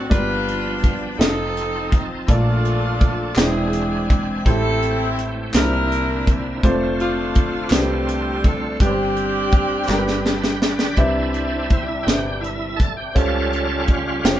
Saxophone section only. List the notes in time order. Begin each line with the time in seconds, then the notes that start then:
0.12 D4 F4 B4
1.19 C4 D#4 A4
2.27 A3 D4 F4
3.36 C4 D4 G#4
4.46 C4 E4 A4
5.57 D4 E4 A#4
7.01 A3 D4 F4
7.74 C4 D4 G4
8.46 A4
8.81 C4 D4 G4